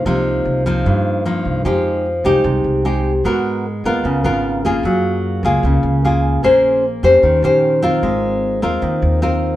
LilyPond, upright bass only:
\new Staff \with { instrumentName = "Upright bass" } { \clef bass \time 4/4 \key c \minor \tempo 4 = 151 c,4 c,4 g,4. c,8 | \key f \minor f,4. c,8 c,8 c,4. | aes,4. ees,8 des,8 aes,,4. | ges,4. des,8 des,8 des,4. |
bes,,4. f,8 ees,8 bes,,4. | aes,,4. ees,8 ees,8 ees,4. | }